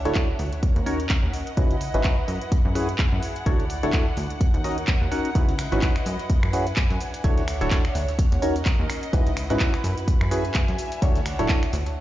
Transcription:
Already playing: D4 C#5 E5 F#5
0.05 D1 D4 E4 F#4 A4 C#5, closed hi-hat
0.15 D4 E4 F#4 C#5, kick, clap, closed hi-hat
0.39 D2, open hi-hat
0.53 closed hi-hat
0.63 C#4, kick, closed hi-hat
0.70 A#4
0.76 D#2, closed hi-hat
0.86 C#4 D#4 F#4 A#4 C#5, open hi-hat
1.00 closed hi-hat
1.06 D#5, kick, clap, closed hi-hat
1.23 D#2
1.34 open hi-hat
1.47 closed hi-hat
1.57 C#2 C#4 D#4 E4 F#4 B4, kick, closed hi-hat
1.63 B4
1.71 closed hi-hat
1.81 open hi-hat
1.94 G#1 C#4 D#4 E4 F#4 B4, closed hi-hat
2.04 C#4 D#4 F#4 B4, kick, clap, closed hi-hat
2.28 F#2, open hi-hat
2.42 closed hi-hat
2.52 kick, closed hi-hat
2.65 F#2 G#4
2.75 C#4 E4 F#4 G#4 B4, open hi-hat
2.89 closed hi-hat
2.98 kick, clap, closed hi-hat
3.12 F#2
3.23 open hi-hat
3.35 D5, closed hi-hat
3.46 D2 D4 E4 F#4 A4 C#5, kick, closed hi-hat
3.60 closed hi-hat
3.70 open hi-hat
3.83 D1 D4 E4 F#4 A4 C#5, closed hi-hat
3.93 D4 E4 F#4 A4 C#5, kick, clap, closed hi-hat
4.17 D2, open hi-hat
4.30 closed hi-hat
4.41 D#4, kick, closed hi-hat
4.53 D#2 A#4, closed hi-hat
4.64 C#4 D#4 F#4 A#4 C#5 D#5, open hi-hat
4.78 closed hi-hat
4.87 kick, clap, closed hi-hat
5.01 D#2
5.12 C#4 D#4 F#4 A#4 F#5, open hi-hat
5.25 closed hi-hat
5.35 C#2 C#4 D#4 E4 F#4 B4, kick, closed hi-hat, tambourine, shaker
5.49 closed hi-hat
5.58 D#5, finger snap, open hi-hat, tambourine, shaker
5.64 B4
5.72 G#1 C#4 D#4 E4 F#4 B4, snare, closed hi-hat, shaker
5.82 C#4 D#4 E4 F#4 B4, kick, snare, clap, closed hi-hat, tambourine, shaker
5.96 finger snap, snare, shaker
6.06 F#2, open hi-hat, tambourine, shaker
6.19 closed hi-hat, shaker
6.30 kick, closed hi-hat, tambourine, shaker
6.43 F#2, finger snap
6.49 C#4 E4 F#4 G#4 B4 G#5, open hi-hat, tambourine, shaker
6.67 closed hi-hat, shaker
6.76 kick, snare, clap, closed hi-hat, tambourine, shaker
6.90 F#2, closed hi-hat
7.01 D4, open hi-hat, tambourine, shaker
7.14 closed hi-hat, shaker
7.24 D2 D4 E4 F#4 A4 C#5 E5, kick, closed hi-hat, tambourine, shaker
7.35 C#5, snare, closed hi-hat
7.48 finger snap, open hi-hat, tambourine, shaker
7.61 D1 D4 E4 F#4 A4 C#5, snare, closed hi-hat, shaker
7.71 D4 E4 F#4 A4 C#5, kick, snare, clap, closed hi-hat, tambourine, shaker
7.85 finger snap, snare, shaker
7.95 D2, snare, open hi-hat, tambourine, shaker
8.09 snare, closed hi-hat, shaker
8.19 C#4, kick, closed hi-hat, tambourine, shaker
8.32 D#2, closed hi-hat
8.42 C#4 D#4 F#4 A#4 C#5, open hi-hat, tambourine, shaker
8.49 A#4
8.56 closed hi-hat, shaker
8.62 D#5, clap
8.66 kick, closed hi-hat, tambourine, shaker
8.79 D#2
8.90 finger snap, open hi-hat, tambourine, shaker
9.03 closed hi-hat, shaker
9.13 C#2 C#4 D#4 E4 F#4 B4, kick, closed hi-hat, tambourine, shaker
9.22 B4
9.27 closed hi-hat
9.37 finger snap, open hi-hat, tambourine, shaker
9.50 G#1 C#4 D#4 E4 F#4 B4, snare, closed hi-hat, shaker
9.60 C#4 D#4 E4 F#4 B4, kick, snare, clap, closed hi-hat, tambourine, shaker
9.74 finger snap, snare, shaker
9.84 F#2 F#4, open hi-hat, tambourine, shaker
9.98 closed hi-hat, shaker
10.08 kick, closed hi-hat, tambourine, shaker
10.21 F#2 E5, finger snap
10.27 G#5
10.31 C#4 E4 F#4 G#4 B4, open hi-hat, tambourine, shaker
10.45 closed hi-hat, shaker
10.54 kick, snare, clap, closed hi-hat, tambourine, shaker
10.68 F#2, closed hi-hat
10.78 D4, open hi-hat, tambourine, shaker
10.92 closed hi-hat, shaker
11.00 D2 D4 E4 F#4 A4 C#5, kick, closed hi-hat, tambourine, shaker
11.12 F#5, snare, closed hi-hat, shaker
11.26 finger snap, open hi-hat, tambourine, shaker
11.39 D1 D4 E4 F#4 A4 C#5, snare, closed hi-hat, shaker
11.49 D4 E4 F#4 C#5, kick, snare, clap, closed hi-hat, tambourine, shaker
11.63 finger snap, snare, closed hi-hat, shaker
11.73 D2, snare, open hi-hat, tambourine, shaker
11.86 snare, closed hi-hat, shaker

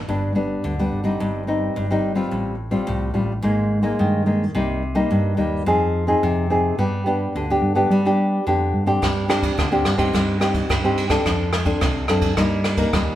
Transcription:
0.08 G1 G2 G3 B3 D4
0.35 G3 B3 D4
0.64 D2 D3
0.79 G3 B3 D4
0.93 G1
1.04 G3 C4 D#4
1.20 G1 G2
1.47 G3 C4 D#4
1.76 G1 G2
1.91 G3 C4 D#4
2.15 G3 C4 F4
2.31 A1 A2
2.71 G3 C4 F4
2.87 C2 A2
3.14 A1 G3 C4 F4
3.42 G#1 G#2 G#3 A#3 D#4
3.83 G#3 A#3 D#4
3.99 G2 D#3
4.26 G#3 A#3 D#4
4.55 C2 C3 G3 A#3 D#4
4.95 G3 A#3 D#4
5.11 G2
5.37 D#2 G3 A#3 D#4
5.66 F2 F3 C4 D#4 G#4
6.07 C4 D#4 G#4
6.23 F2 C3
6.50 C4 D#4 G#4
6.78 G2 G3 B3 D4 G4
7.06 B3 D4 G4
7.35 D2 D3
7.50 B3 D4 G4
7.62 G2
7.75 B3 D4 G4
7.90 G3
8.05 B3 D4 G4
8.47 F2 D3 B3 D4 G4
8.74 G2
8.86 C4 D4 G4
9.02 G2 G3, kick, cross-stick, ride
9.28 C4 D4 G4, cross-stick, ride
9.43 kick, ride
9.58 D2 D3, kick, cross-stick, ride
9.72 C4 D4 G4
9.85 G2, cross-stick, ride
9.98 C4 D#4 G4, kick, ride
10.13 G2 G3, kick, cross-stick, ride
10.40 C4 D#4 G4, cross-stick, ride
10.54 kick, ride
10.69 G2 G3, kick, cross-stick, ride
10.84 C4 D#4 G4
10.97 ride
11.09 C4 D4 A4, kick, cross-stick, ride
11.26 F2 F3, kick, cross-stick, ride
11.53 cross-stick, ride
11.65 C4 D4 A4, kick, ride
11.81 C2 C3, kick, cross-stick, ride
12.08 F#2 C4 D4 A4, cross-stick, ride
12.21 kick, ride
12.37 G2 G3 A#3 D#4 A#4, kick, cross-stick, ride
12.64 cross-stick, ride
12.77 A#3 D#4 A#4, kick, ride
12.93 D#2 G3, kick, cross-stick, ride

